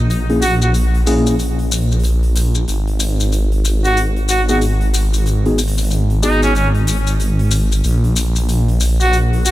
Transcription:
0.00 2.66 A#1 medium
0.10 open hi-hat soft
0.10 maracas soft
0.30 0.43 A#3 medium
0.30 0.43 C#4 medium
0.30 0.43 E4 medium
0.30 0.43 G#4 medium
0.30 open hi-hat soft
0.42 0.55 F#4 medium
0.42 open hi-hat medium
0.42 maracas medium
0.62 0.70 F#4 medium
0.62 maracas medium
0.74 open hi-hat soft
0.74 maracas soft
0.94 open hi-hat soft
1.07 1.35 A#3 medium
1.07 1.35 C#4 medium
1.07 1.35 E4 medium
1.07 1.35 G#4 loud
1.07 open hi-hat medium
1.07 maracas medium
1.27 open hi-hat soft
1.27 maracas soft
1.39 open hi-hat soft
1.39 maracas soft
1.59 open hi-hat soft
1.72 open hi-hat medium
1.72 maracas medium
1.91 open hi-hat soft
1.91 maracas soft
1.99 open hi-hat soft
2.04 open hi-hat soft
2.04 maracas soft
2.10 open hi-hat soft
2.23 open hi-hat soft
2.36 open hi-hat medium
2.36 maracas medium
2.55 maracas soft
2.68 7.82 G#1 medium
2.68 open hi-hat soft
2.68 maracas soft
2.87 open hi-hat soft
3.00 open hi-hat medium
3.00 maracas medium
3.20 open hi-hat soft
3.20 maracas medium
3.32 open hi-hat soft
3.32 maracas soft
3.52 open hi-hat soft
3.65 open hi-hat medium
3.65 maracas medium
3.84 4.00 F#4 medium
3.84 open hi-hat soft
3.84 maracas medium
3.97 open hi-hat soft
3.97 maracas soft
4.16 open hi-hat soft
4.29 4.42 F#4 medium
4.29 open hi-hat medium
4.29 maracas medium
4.49 4.62 B3 medium
4.49 4.62 D#4 medium
4.49 4.57 F#4 medium
4.49 4.62 F#4 medium
4.49 4.62 G#4 medium
4.49 open hi-hat soft
4.49 maracas soft
4.61 open hi-hat soft
4.61 maracas soft
4.81 open hi-hat soft
4.94 open hi-hat medium
4.94 maracas medium
5.13 open hi-hat soft
5.13 maracas soft
5.26 open hi-hat soft
5.26 maracas soft
5.45 5.59 B3 medium
5.45 5.59 D#4 medium
5.45 5.59 F#4 medium
5.45 5.59 G#4 medium
5.45 open hi-hat soft
5.58 open hi-hat medium
5.58 maracas medium
5.68 open hi-hat medium
5.78 open hi-hat soft
5.78 maracas soft
5.84 open hi-hat soft
5.90 open hi-hat soft
5.90 maracas soft
6.10 open hi-hat soft
6.23 6.51 B3 medium
6.23 6.51 D#4 medium
6.23 6.39 D#4 medium
6.23 6.51 F#4 medium
6.23 6.51 G#4 loud
6.23 open hi-hat medium
6.23 maracas medium
6.42 6.51 C#4 medium
6.42 open hi-hat soft
6.42 maracas soft
6.55 6.68 C#4 medium
6.55 open hi-hat soft
6.55 maracas soft
6.75 open hi-hat soft
6.87 open hi-hat medium
6.87 maracas medium
7.07 open hi-hat soft
7.07 maracas soft
7.20 open hi-hat soft
7.20 maracas soft
7.39 open hi-hat soft
7.51 open hi-hat medium
7.51 maracas medium
7.72 open hi-hat soft
7.72 maracas soft
7.84 9.51 A#1 medium
7.84 open hi-hat soft
7.84 maracas soft
8.04 open hi-hat soft
8.16 open hi-hat medium
8.16 maracas medium
8.36 open hi-hat soft
8.36 maracas soft
8.49 open hi-hat soft
8.49 maracas soft
8.68 open hi-hat soft
8.80 open hi-hat medium
8.80 maracas medium
9.00 9.17 F#4 medium
9.00 open hi-hat soft
9.00 maracas soft
9.13 open hi-hat soft
9.13 maracas soft
9.33 open hi-hat soft
9.36 open hi-hat soft
9.40 open hi-hat soft
9.43 9.51 F#4 medium
9.43 open hi-hat soft
9.43 maracas medium
9.46 open hi-hat medium

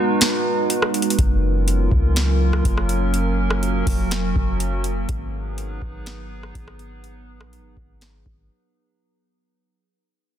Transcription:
0.00 1.15 G#3 medium
0.00 1.15 B3 medium
0.00 1.15 D#4 medium
0.00 1.15 F#4 medium
0.00 1.15 B4 loud
0.21 snare loud
0.21 closed hi-hat medium
0.70 closed hi-hat medium
0.82 cross-stick medium
0.94 closed hi-hat medium
1.02 closed hi-hat medium
1.10 closed hi-hat medium
1.18 1.89 F#1 loud
1.18 8.95 F#3 medium
1.18 5.05 A#3 medium
1.18 5.05 C#4 medium
1.18 3.12 F4 medium
1.18 5.05 A#4 loud
1.18 kick loud
1.18 closed hi-hat medium
1.68 closed hi-hat medium
1.92 2.62 C#2 loud
1.92 kick loud
2.16 snare loud
2.16 closed hi-hat medium
2.53 cross-stick medium
2.65 3.83 F#1 loud
2.65 kick loud
2.65 closed hi-hat medium
2.77 cross-stick medium
2.89 closed hi-hat medium
3.14 5.07 F#4 medium
3.14 closed hi-hat medium
3.50 cross-stick loud
3.63 closed hi-hat medium
3.87 4.34 F1 loud
3.87 kick loud
3.87 open hi-hat medium
4.11 snare loud
4.11 closed hi-hat medium
4.36 5.06 F#1 loud
4.36 kick loud
4.60 closed hi-hat medium
4.84 closed hi-hat medium
5.09 5.79 G#1 loud
5.09 8.95 B3 medium
5.09 8.95 D#4 medium
5.09 8.95 G#4 medium
5.09 8.95 B4 loud
5.09 kick loud
5.09 closed hi-hat medium
5.58 closed hi-hat medium
5.82 6.52 G#1 loud
5.82 kick loud
6.06 snare loud
6.06 closed hi-hat medium
6.43 cross-stick medium
6.55 7.42 G#1 loud
6.55 kick loud
6.55 closed hi-hat medium
6.68 cross-stick loud
6.79 closed hi-hat medium
7.04 closed hi-hat medium
7.40 7.60 A#1 loud
7.40 cross-stick loud
7.53 closed hi-hat medium
7.59 7.76 G#1 loud
7.77 8.24 G#1 loud
7.77 kick loud
8.01 snare loud
8.01 closed hi-hat medium
8.26 8.49 G#1 loud
8.26 kick medium

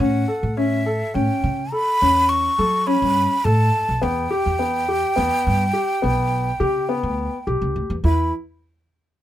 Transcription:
0.00 0.22 A2 medium
0.00 0.23 C#4 medium
0.00 0.59 F#5 medium
0.28 0.51 A4 medium
0.43 1.00 A2 medium
0.57 0.80 C#4 medium
0.57 1.16 E5 medium
0.86 1.09 A4 medium
1.14 1.26 A2 medium
1.14 1.61 C#4 medium
1.14 1.74 G5 medium
1.44 1.66 C#3 medium
1.72 1.95 A4 medium
1.72 2.31 B5 medium
2.01 2.47 E2 medium
2.01 2.47 C#4 medium
2.29 2.88 C#6 medium
2.58 2.93 F#3 medium
2.58 2.82 A4 medium
2.87 3.33 C#4 medium
2.87 3.46 B5 medium
3.02 3.25 G2 medium
3.44 3.68 A2 medium
3.44 3.91 A4 medium
3.44 4.04 A5 medium
3.89 4.00 B1 medium
4.02 4.25 E2 medium
4.02 4.25 B3 medium
4.02 7.47 G5 medium
4.31 4.54 G4 medium
4.46 5.03 E2 medium
4.59 4.82 B3 medium
4.88 5.12 G4 medium
5.16 5.29 E2 medium
5.16 5.63 B3 medium
5.47 5.69 G2 medium
5.73 5.97 G4 medium
6.02 6.49 B1 medium
6.02 6.49 B3 medium
6.60 6.95 C#3 medium
6.60 6.83 G4 medium
6.89 7.35 B3 medium
7.03 7.27 D2 medium
7.47 7.60 B1 medium
7.47 7.93 G4 medium
7.62 7.74 C#2 medium
7.76 7.89 D2 medium
7.90 8.03 E2 medium
8.04 8.31 E2 medium
8.04 8.31 E4 medium
8.04 8.32 B5 medium

